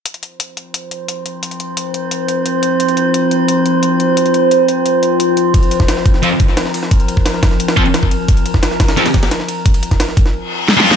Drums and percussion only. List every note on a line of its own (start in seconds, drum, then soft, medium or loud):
0.06 closed hi-hat medium
0.14 closed hi-hat soft
0.23 closed hi-hat medium
0.40 closed hi-hat loud
0.57 closed hi-hat medium
0.74 closed hi-hat medium
0.91 closed hi-hat medium
1.08 closed hi-hat medium
1.26 closed hi-hat medium
1.43 closed hi-hat medium
1.51 closed hi-hat soft
1.60 closed hi-hat medium
1.77 closed hi-hat medium
1.94 closed hi-hat medium
2.11 closed hi-hat medium
2.28 closed hi-hat medium
2.46 closed hi-hat medium
2.63 closed hi-hat medium
2.80 closed hi-hat medium
2.88 closed hi-hat soft
2.97 closed hi-hat medium
3.14 closed hi-hat medium
3.31 closed hi-hat medium
3.48 closed hi-hat medium
3.66 closed hi-hat medium
3.83 closed hi-hat medium
4.00 closed hi-hat medium
4.17 closed hi-hat medium
4.26 closed hi-hat soft
4.34 closed hi-hat medium
4.51 closed hi-hat medium
4.68 closed hi-hat medium
4.86 closed hi-hat medium
5.03 closed hi-hat medium
5.20 closed hi-hat medium
5.37 closed hi-hat medium
5.54 kick loud
5.54 closed hi-hat medium
5.54 ride medium
5.63 closed hi-hat soft
5.71 closed hi-hat medium
5.71 ride medium
5.80 kick medium
5.80 snare medium
5.88 snare loud
5.88 closed hi-hat medium
5.88 ride medium
5.97 snare soft
6.06 kick loud
6.06 closed hi-hat medium
6.06 ride medium
6.14 snare soft
6.23 closed hi-hat medium
6.23 ride medium
6.40 kick loud
6.40 closed hi-hat medium
6.40 ride medium
6.48 snare soft
6.57 snare loud
6.57 closed hi-hat medium
6.57 ride medium
6.66 snare soft
6.74 closed hi-hat medium
6.74 open hi-hat medium
6.83 snare soft
6.91 kick loud
6.91 closed hi-hat medium
6.91 ride medium
7.00 closed hi-hat soft
7.08 closed hi-hat medium
7.08 ride medium
7.17 kick medium
7.26 snare loud
7.26 closed hi-hat medium
7.26 ride medium
7.34 snare medium
7.43 kick loud
7.43 snare loud
7.43 closed hi-hat medium
7.43 ride medium
7.51 snare soft
7.60 closed hi-hat medium
7.60 ride medium
7.68 snare loud
7.68 ride medium
7.77 kick loud
7.77 closed hi-hat medium
7.86 ride medium
7.94 snare loud
7.94 closed hi-hat medium
7.94 ride medium
8.03 kick medium
8.11 closed hi-hat medium
8.11 ride medium
8.28 kick loud
8.28 closed hi-hat medium
8.28 ride medium
8.37 closed hi-hat soft
8.46 closed hi-hat medium
8.46 ride medium
8.54 kick medium
8.54 snare medium
8.63 snare loud
8.63 closed hi-hat medium
8.63 ride medium
8.71 snare soft
8.80 kick loud
8.80 snare loud
8.80 closed hi-hat medium
8.80 ride medium
8.88 snare loud
8.88 ride medium
8.97 snare loud
8.97 closed hi-hat medium
8.97 ride medium
9.06 snare loud
9.06 ride medium
9.14 kick medium
9.14 snare loud
9.14 closed hi-hat medium
9.14 ride medium
9.23 snare loud
9.23 ride medium
9.31 snare loud
9.31 closed hi-hat medium
9.31 ride medium
9.40 snare soft
9.48 closed hi-hat medium
9.48 ride medium
9.66 kick loud
9.66 closed hi-hat loud
9.66 ride medium
9.74 closed hi-hat soft
9.74 ride medium
9.83 closed hi-hat medium
9.83 ride medium
9.91 kick medium
9.91 snare soft
9.91 closed hi-hat soft
10.00 snare loud
10.00 closed hi-hat medium
10.00 ride medium
10.09 snare medium
10.17 kick loud
10.17 closed hi-hat medium
10.17 ride medium
10.26 snare soft
10.69 snare medium
10.80 snare medium
10.91 snare medium